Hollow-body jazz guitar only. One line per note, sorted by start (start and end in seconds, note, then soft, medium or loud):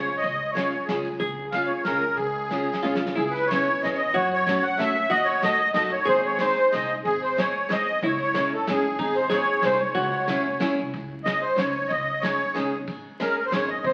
0.00 1.19 F4 medium
1.20 2.82 G#4 medium
2.83 3.14 F4 medium
3.15 4.17 E4 medium
4.14 5.07 F#4 medium
5.10 6.05 F#4 loud
6.05 8.08 G#4 loud
8.04 8.98 E4 medium
8.99 9.31 D#4 medium
9.30 9.94 G#4 loud
9.95 10.63 F#4 medium
10.61 10.92 E4 medium